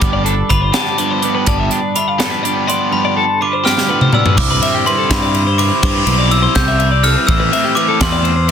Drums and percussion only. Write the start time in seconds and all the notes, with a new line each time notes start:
0.01 kick, closed hi-hat
0.26 closed hi-hat
0.50 kick, closed hi-hat
0.74 snare, closed hi-hat
0.98 closed hi-hat
1.22 closed hi-hat
1.46 kick, closed hi-hat
1.71 closed hi-hat
1.96 closed hi-hat
2.20 snare, closed hi-hat
2.45 closed hi-hat
2.69 closed hi-hat
3.66 snare
3.78 snare
4.01 mid tom
4.13 mid tom
4.26 floor tom
4.37 kick, crash
4.62 ride
4.87 ride
5.11 kick, snare, ride
5.34 ride
5.59 ride
5.83 kick, ride
6.07 ride
6.31 ride
6.55 kick, snare, ride
6.80 ride
7.04 ride
7.28 kick, ride
7.53 ride
7.77 ride
8.01 kick, snare, ride
8.25 ride